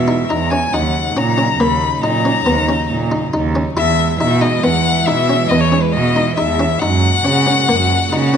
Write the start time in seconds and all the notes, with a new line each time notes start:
Already playing: B2 E3 G#3 E4 E5
0.08 D#4
0.29 E2 D#4 A#5
0.50 C#4 G#5
0.72 D#2 C#3 F#3 D#4 F#5
1.16 A#2 C#4 A#5
1.38 C#4
1.59 D#2 A#3 B5
2.03 A#2 D#4 A#5
2.25 C#4
2.46 D#2 B3
2.69 C#4
2.90 A#2
3.12 D#4
3.34 D#2 D#4
3.55 C#4
3.77 E2 E3 G#3 E4 E5
4.20 B2 D#4 E5
4.41 D#4 D#5
4.63 E2 B3 F#5
5.06 B2 D#4 E5
5.29 C#4
5.49 E2 B3 D#5
5.61 C#5
5.72 C#4
5.82 B4
5.92 B2 D#5
6.16 D#4
6.36 E2 D#4 E5
6.59 C#4
6.79 F#2 A#2 D#4 F#4 F#5
7.24 C#3 C#4
7.47 C#4
7.68 F#2 A#3
8.12 C#3 D#4
8.34 C#4